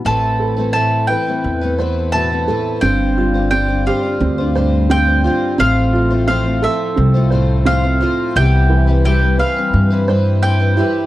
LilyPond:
<<
  \new Staff \with { instrumentName = "Mandolin" } { \time 4/4 \key a \minor \tempo 4 = 87 a''4 a''8 g''4 r8 a''4 | g''4 g''8 f''4 r8 g''4 | f''4 f''8 e''4 r8 f''4 | g''4 g''8 f''4 r8 g''4 | }
  \new Staff \with { instrumentName = "Upright piano" } { \time 4/4 \key a \minor r8 a'4 b'4 c''4 a'8 | c'8 f'8 c'8 g'8 c'8 c''8 c'8 f'8 | c'8 f'8 c'8 a'8 c'8 c''8 c'8 f'8 | r8 e4 b'4 c''4 e'8 | }
  \new Staff \with { instrumentName = "Twelve-string acoustic guitar" } { \time 4/4 \key a \minor <a, e a c' e' b'>8. <a c' e' b'>16 <a, e a c' e' b'>8 <a c' e' b'>16 <a c' e' b'>8 <a c' e' b'>16 <a c' e' b'>8 <a, e a c' e' b'>16 <a c' e' b'>16 <a c' e' b'>8 | <g d' f' c''>8. <d' f' c''>16 <g d' f' c''>16 <d' f' c''>16 <g d' f' c''>16 <d' f' c''>8 <d' f' c''>16 <g d' f' c''>8 <g d' f' c''>16 <d' f' c''>16 <g d' f' c''>8 | <a, f a c' f' c''>8. <a c' f' c''>16 <a, f a c' f' c''>16 <a c' f' c''>16 <a c' f' c''>8. <a c' f' c''>16 <a c' f' c''>8 <a, f a c' f' c''>16 <a c' f' c''>16 <a c' f' c''>8 | <c e g c' e' b'>8. <g c' e' b'>16 <c e g c' e' b'>16 <g c' e' b'>16 <g c' e' b'>16 <g c' b'>8 <g c' e' b'>16 <g c' e' b'>8 <c e g c' e' b'>16 <g c' e' b'>16 <g c' e' b'>8 | }
  \new Staff \with { instrumentName = "Steel-string acoustic guitar" } { \clef bass \time 4/4 \key a \minor << { <c' e'>1 | c'8 g8 c'2 g8 f'8 | c'8 a8 c'2 a8 f'8 | <e b g'>4 g'2~ g'8 g'8 | } \\ { a,4. e4 e,8 b,8 a,8 | g,4. d4 g,4. | a,4. f4 a,4. | c4. e4 g,4. | } >> }
  \new Staff \with { instrumentName = "Upright bass" } { \clef bass \time 4/4 \key a \minor a,,2 e,2 | g,,2 d,2 | a,,2 c,2 | c,2 g,2 | }
>>